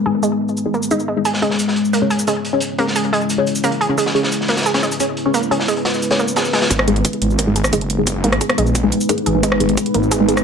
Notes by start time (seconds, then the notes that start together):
Already playing: G#3 B3 D#4 B4
0.06 G#3 D#4 G#4
0.23 G#3, shaker
0.49 shaker
0.57 shaker
0.66 G#3 D#4 G#4
0.74 A#3, shaker
0.83 shaker
0.91 G#3 D#4 G#4, shaker
1.00 shaker
1.08 G#3
1.17 G#3 D#4 G#4
1.25 C#4 E4 G#4 C#5, closed hi-hat, shaker
1.34 snare
1.42 G#3 C#4 G#4 C#5, closed hi-hat
1.51 snare
1.59 closed hi-hat, shaker
1.68 snare
1.76 closed hi-hat
1.85 shaker
1.93 A#3, closed hi-hat, shaker
2.02 C#4 G#4 C#5
2.10 G#4, closed hi-hat, shaker
2.19 shaker
2.27 G#3 C#4 G#4 C#5, closed hi-hat, shaker
2.45 closed hi-hat
2.53 C#4 G#4 C#5
2.60 closed hi-hat, shaker
2.78 A#3 C#4 G#4 C#5, closed hi-hat
2.87 snare
2.96 G#4, closed hi-hat, shaker
3.04 closed hi-hat
3.13 G#3, closed hi-hat
3.21 shaker
3.30 closed hi-hat, shaker
3.38 C#4 G#4 C#5
3.47 closed hi-hat, shaker
3.55 closed hi-hat, shaker
3.64 A#3 C#4 G#4 C#5, closed hi-hat, shaker
3.72 closed hi-hat
3.81 G#4, closed hi-hat
3.89 C#4 G#4 C#5
3.98 G#3 B4, closed hi-hat, shaker
4.06 snare
4.15 C#4 G#4 C#5, closed hi-hat
4.23 snare
4.32 closed hi-hat, shaker
4.41 snare
4.48 A#3, snare, closed hi-hat
4.57 snare, closed hi-hat, shaker
4.62 snare, closed hi-hat
4.66 G#4, closed hi-hat, shaker
4.74 C#4 G#4 C#5, snare, closed hi-hat
4.83 G#3, closed hi-hat, shaker
4.92 closed hi-hat, shaker
5.00 C#4 G#4 C#5, closed hi-hat, shaker
5.17 closed hi-hat
5.26 C#4 G#4 C#5
5.34 A#3, closed hi-hat, shaker
5.43 shaker
5.51 C#4 G#4 C#5, closed hi-hat
5.60 snare
5.68 G#3, closed hi-hat, shaker
5.76 closed hi-hat
5.85 snare, closed hi-hat
5.94 snare, shaker
6.02 closed hi-hat, shaker
6.11 C#4 G#4 C#5, snare, closed hi-hat
6.19 A#3, shaker
6.28 shaker
6.36 G#4, snare, closed hi-hat, shaker
6.45 snare, shaker
6.53 G#3, snare, closed hi-hat
6.62 snare, closed hi-hat
6.70 G#1 G#3 B3 D#4 G#4 B4, kick, closed hi-hat, shaker
6.79 cross-stick
6.88 G#3 D#4 G#4, closed hi-hat
6.96 closed hi-hat
7.05 kick, closed hi-hat, shaker
7.13 closed hi-hat
7.22 G#1, closed hi-hat
7.30 shaker
7.39 A#3, kick, closed hi-hat, shaker
7.47 G#3 D#4 G#4
7.56 G#4, closed hi-hat, shaker
7.64 cross-stick, shaker
7.73 F#1 G#3 D#4 G#4, kick, closed hi-hat, shaker
7.81 closed hi-hat
7.90 closed hi-hat
7.98 G#3 D#4 G#4
8.07 kick, closed hi-hat, shaker
8.24 G#1 G#3 A#3 D#4 G#4, closed hi-hat
8.32 cross-stick, closed hi-hat
8.41 G#4, kick, closed hi-hat, shaker
8.49 cross-stick, closed hi-hat
8.58 A#1 G#3, closed hi-hat
8.67 shaker
8.75 kick, closed hi-hat, shaker
8.84 G#3 D#4 G#4
8.92 closed hi-hat, shaker
9.01 shaker
9.09 G#3 A#3 D#4 G#4, kick, closed hi-hat, shaker
9.18 closed hi-hat
9.26 G#1 G#4, closed hi-hat
9.35 G#3 D#4 G#4
9.43 G#1 G#3, kick, closed hi-hat, shaker
9.52 cross-stick
9.60 G#3 D#4 G#4, closed hi-hat
9.69 closed hi-hat
9.77 kick, closed hi-hat, shaker
9.86 closed hi-hat
9.94 G#1 A#3, closed hi-hat
10.03 shaker
10.11 G#4, kick, closed hi-hat, shaker
10.20 G#3 D#4 G#4
10.29 G#3, closed hi-hat, shaker
10.37 cross-stick, shaker